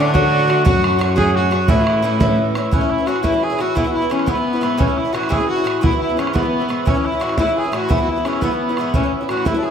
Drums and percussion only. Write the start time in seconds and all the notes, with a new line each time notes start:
0.15 bodhran
0.50 bodhran
0.66 bodhran
0.84 bodhran
1.01 bodhran
1.18 bodhran
1.52 bodhran
1.68 bodhran
1.87 bodhran
2.21 bodhran
2.55 bodhran
2.73 bodhran
2.91 bodhran
3.07 bodhran
3.16 bodhran
3.24 bodhran
3.59 bodhran
3.77 bodhran
3.95 bodhran
4.11 bodhran
4.19 bodhran
4.27 bodhran
4.63 bodhran
4.80 bodhran
4.98 bodhran
5.15 bodhran
5.23 bodhran
5.32 bodhran
5.67 bodhran
5.84 bodhran
6.02 bodhran
6.19 bodhran
6.27 bodhran
6.36 bodhran
6.70 bodhran
6.87 bodhran
7.05 bodhran
7.21 bodhran
7.29 bodhran
7.38 bodhran
7.73 bodhran
7.90 bodhran
8.08 bodhran
8.25 bodhran
8.33 bodhran
8.42 bodhran
8.77 bodhran
8.94 bodhran
9.13 bodhran
9.29 bodhran
9.37 bodhran
9.46 bodhran